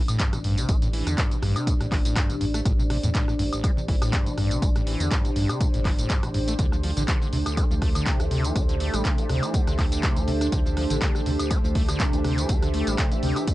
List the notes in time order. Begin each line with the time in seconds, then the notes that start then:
Already playing: A1 D4 G4 C5 D5
0.08 A2, closed hi-hat, tambourine, high woodblock
0.20 G2, kick, clap, closed hi-hat, tambourine
0.33 A1 C3, cross-stick, closed hi-hat, tambourine
0.44 G2, open hi-hat
0.58 C3, closed hi-hat, tambourine
0.69 A1 A3, kick, cross-stick, closed hi-hat, tambourine
0.82 A2, closed hi-hat, tambourine
0.93 E3, open hi-hat
1.07 E2 D3, cross-stick, closed hi-hat, tambourine
1.18 G2, kick, clap, closed hi-hat, tambourine
1.31 C3, closed hi-hat, tambourine
1.42 A1 G2, cross-stick, open hi-hat
1.56 C3, closed hi-hat, tambourine, high woodblock
1.67 A2, kick, closed hi-hat, tambourine
1.80 A1 A2, cross-stick, closed hi-hat, tambourine
1.92 E3, kick, clap, open hi-hat, high woodblock
2.05 A2, closed hi-hat, tambourine
2.16 G2, kick, cross-stick, clap, closed hi-hat, tambourine
2.30 A1 C3, closed hi-hat, tambourine
2.41 G2, open hi-hat
2.54 A3, cross-stick, closed hi-hat, tambourine
2.65 A1 A2, kick, closed hi-hat, tambourine
2.79 C3, tambourine
2.90 C3, cross-stick, open hi-hat
3.03 E2 A2, closed hi-hat, tambourine
3.15 A2, kick, clap, closed hi-hat, tambourine
3.28 A2, cross-stick, tambourine
3.39 A1 G2, open hi-hat
3.53 A1, closed hi-hat, tambourine, high woodblock
3.64 A3, kick, cross-stick, closed hi-hat, tambourine, high woodblock
3.77 A1 C3, tambourine
3.88 E3, kick, open hi-hat
4.02 A2, cross-stick, closed hi-hat, tambourine, high woodblock
4.13 G2, kick, clap, closed hi-hat, tambourine
4.26 A1 C3, closed hi-hat, tambourine
4.37 G2, cross-stick, open hi-hat
4.51 C3, closed hi-hat, tambourine
4.62 A1 A3, kick, closed hi-hat, tambourine
4.76 A2, cross-stick, closed hi-hat, tambourine
4.87 E3, open hi-hat
5.00 E2 D3, closed hi-hat, tambourine
5.11 G2, kick, cross-stick, clap, closed hi-hat, tambourine
5.25 C3, closed hi-hat, tambourine
5.36 A1 G2, open hi-hat
5.49 C3, cross-stick, closed hi-hat, tambourine, high woodblock
5.61 A2, kick, closed hi-hat, tambourine
5.74 G1 A2, closed hi-hat, tambourine
5.85 E3, kick, cross-stick, clap, open hi-hat, high woodblock
5.99 A2, closed hi-hat, tambourine
6.10 G2, kick, clap, closed hi-hat, tambourine
6.23 A1 C3, cross-stick, closed hi-hat, tambourine
6.34 G2, open hi-hat
6.48 A3, closed hi-hat, tambourine
6.59 D2 D3 A3 A4, kick, closed hi-hat, tambourine
6.72 F3, cross-stick, tambourine
6.76 E5
6.83 F3, open hi-hat
6.97 A1 D3, closed hi-hat, tambourine
7.08 D3, kick, cross-stick, clap, closed hi-hat, tambourine
7.22 D3, tambourine
7.33 D2 C3, open hi-hat
7.46 D2, cross-stick, closed hi-hat, tambourine, high woodblock
7.57 D4, kick, closed hi-hat, tambourine, high woodblock
7.71 D2 F3, tambourine
7.82 A3, kick, cross-stick, open hi-hat
7.95 D3, closed hi-hat, tambourine, high woodblock
8.06 C3, kick, clap, closed hi-hat, tambourine
8.20 D2 F3, cross-stick, closed hi-hat, tambourine
8.31 C3, open hi-hat
8.44 E3, closed hi-hat, tambourine
8.56 D2 D4, kick, cross-stick, closed hi-hat, tambourine
8.69 D3, closed hi-hat, tambourine
8.80 A3, open hi-hat
8.94 A1 G3, cross-stick, closed hi-hat, tambourine
9.05 C3, kick, clap, closed hi-hat, tambourine
9.18 F3, closed hi-hat, tambourine
9.29 D2 C3, cross-stick, open hi-hat
9.43 E3, closed hi-hat, tambourine, high woodblock
9.54 D3, kick, closed hi-hat, tambourine
9.67 D2 D3, cross-stick, closed hi-hat, tambourine
9.79 A3, kick, clap, open hi-hat, high woodblock
9.92 D3, closed hi-hat, tambourine
10.03 C3, kick, cross-stick, clap, closed hi-hat, tambourine
10.16 D2 F3, closed hi-hat, tambourine
10.28 C3, open hi-hat
10.41 D4, cross-stick, closed hi-hat, tambourine
10.52 D2 D3, kick, closed hi-hat, tambourine
10.66 F3, tambourine
10.77 F3, cross-stick, open hi-hat
10.90 A1 D3, closed hi-hat, tambourine
11.02 D3, kick, clap, closed hi-hat, tambourine
11.15 D3, cross-stick, tambourine
11.26 D2 C3, open hi-hat
11.39 D2, closed hi-hat, tambourine, high woodblock
11.51 D4, kick, cross-stick, closed hi-hat, tambourine, high woodblock
11.64 D2 F3, tambourine
11.75 A3, kick, open hi-hat
11.89 D3, cross-stick, closed hi-hat, tambourine, high woodblock
12.00 C3, kick, clap, closed hi-hat, tambourine
12.13 D2 F3, closed hi-hat, tambourine
12.24 C3, cross-stick, open hi-hat
12.38 E3, closed hi-hat, tambourine
12.49 D2 D4, kick, closed hi-hat, tambourine
12.62 D3, cross-stick, closed hi-hat, tambourine
12.74 A3, open hi-hat
12.87 A1 G3, closed hi-hat, tambourine
12.98 C3, kick, cross-stick, clap, closed hi-hat, tambourine
13.12 F3, closed hi-hat, tambourine
13.23 D2 C3, open hi-hat
13.36 E3, cross-stick, closed hi-hat, tambourine, high woodblock
13.47 D3, kick, closed hi-hat, tambourine